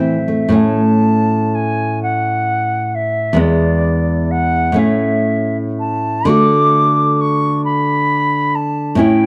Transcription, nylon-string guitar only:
0.00 0.47 A2 soft
0.00 0.17 E3 soft
0.00 0.44 C4 soft
0.28 0.49 A3 soft
0.49 3.32 A2 medium
0.49 3.33 A3 soft
0.49 3.34 C#4 soft
3.33 4.70 E2 medium
3.33 4.71 G#3 soft
3.33 4.72 B3 soft
4.72 6.23 A2 medium
4.72 6.24 A3 soft
4.72 6.25 C#4 soft
6.25 8.94 D3 medium
6.25 8.95 A3 medium
6.25 8.96 F#4 soft
8.95 9.26 A2 medium
8.95 9.26 C#4 medium
8.95 9.26 E4 medium

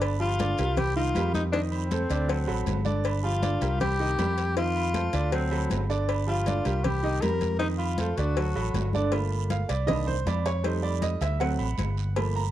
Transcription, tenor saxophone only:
0.20 0.79 F4 loud
0.77 0.96 G4 loud
0.96 1.32 F4 loud
1.34 1.43 D#4 medium
1.52 1.61 D4 loud
1.71 2.82 C4 medium
3.24 3.77 F4 medium
3.81 4.53 G4 loud
4.57 5.29 F4 loud
5.33 5.86 C4 medium
6.29 6.85 F4 medium
6.84 7.23 G4 loud
7.21 7.58 A#4 loud
7.59 7.68 D#4 loud
7.78 8.18 F4 medium
8.16 8.93 F#4 medium

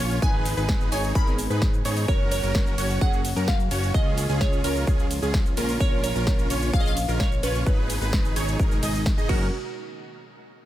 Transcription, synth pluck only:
0.00 0.18 F5 medium
0.22 0.88 G#5 loud
0.92 1.16 G#5 loud
1.15 1.81 B5 loud
2.08 2.30 C#5 loud
2.32 2.97 C#5 loud
3.01 3.49 F#5 loud
3.48 3.91 F5 loud
3.94 4.38 D#5 loud
4.41 4.63 C#5 medium
4.64 5.07 C#5 medium
5.81 5.91 C#5 loud
6.04 6.69 C#5 loud
6.74 6.81 F5 loud
6.80 6.87 D#5 loud
6.87 7.21 F5 loud
7.20 7.44 C#5 loud
7.43 9.02 B4 medium
9.29 9.51 F#4 medium

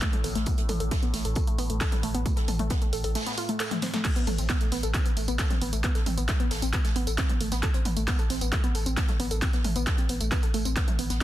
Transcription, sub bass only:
0.24 0.35 A1 loud
0.35 0.46 A1 medium
0.69 0.80 A1 loud
0.80 0.91 A1 medium
1.14 1.24 A1 loud
1.25 1.36 A1 medium
1.58 1.69 A1 loud
1.70 1.81 A1 medium
2.03 2.14 A1 loud
2.14 2.25 A1 medium
2.48 2.59 A1 medium
2.59 2.70 A1 medium
2.93 3.03 A1 loud
3.04 3.15 A1 medium
4.27 4.38 A1 loud
4.38 4.49 A1 medium
4.72 4.83 A1 loud
4.83 4.94 A1 medium
5.17 5.27 A1 loud
5.28 5.39 A1 medium
5.61 5.72 A1 loud
5.73 5.84 A1 medium
6.06 6.17 A1 medium
6.17 6.28 A1 medium
6.51 6.62 A1 loud
6.62 6.73 A1 medium
6.96 7.06 A1 loud
7.07 7.18 A1 medium
7.40 7.51 A1 loud
7.52 7.63 A1 medium
7.85 7.96 A1 medium
7.97 8.07 A1 medium
8.30 8.41 A1 loud
8.41 8.52 A1 medium
8.75 8.86 A1 loud
8.86 8.97 A1 medium
9.20 9.30 A1 loud
9.31 9.42 A1 medium
9.64 9.75 A1 medium
9.76 9.87 A1 medium
10.09 10.20 A1 loud
10.21 10.31 A1 medium
10.54 10.65 A1 loud
10.65 10.76 A1 medium
10.99 11.09 A1 loud
11.10 11.21 A1 medium

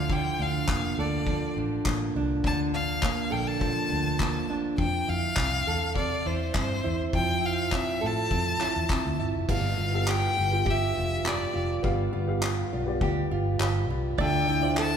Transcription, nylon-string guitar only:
0.00 1.27 F3 medium
0.00 0.39 D4 soft
0.00 0.72 A4 medium
0.10 2.44 D3 medium
0.39 1.57 D4 soft
0.69 1.85 A#3 soft
0.99 3.30 A4 medium
1.27 3.60 F3 medium
1.58 2.15 D4 medium
1.87 3.03 A#3 medium
2.16 2.73 D4 medium
2.45 4.80 D3 medium
2.74 3.89 D4 medium
3.04 4.18 A#3 medium
3.31 5.67 A4 medium
3.60 5.11 F3 medium
3.90 4.49 D4 medium
4.20 4.85 A#3 soft
4.50 4.85 D4 medium
5.08 6.24 E4 soft
5.37 5.95 C4 medium
5.67 8.00 A4 medium
5.96 6.54 C4 medium
6.26 6.83 E4 medium
6.56 7.71 C4 medium
6.84 7.40 E4 medium
7.13 9.52 F3 medium
7.41 8.59 E4 medium
7.72 8.29 C4 medium
8.01 9.54 A4 medium
8.30 8.88 C4 medium
8.60 9.18 E4 medium
8.90 9.54 C4 medium
9.19 9.55 E4 medium
9.49 11.82 G2 medium
9.77 10.36 F4 medium
10.07 10.64 G4 medium
10.37 10.95 F4 medium
10.66 11.24 G4 medium
10.95 11.53 F4 medium
11.25 12.41 G4 medium
11.53 12.12 F4 medium
11.83 14.18 G2 medium
12.13 12.72 F4 medium
12.42 13.01 G4 medium
12.73 13.31 F4 medium
13.02 13.59 G4 medium
13.31 13.90 F4 medium
13.60 14.24 G4 medium
13.90 14.48 F4 medium
14.20 14.97 D3 medium
14.49 14.97 E4 medium
14.78 14.97 A4 medium

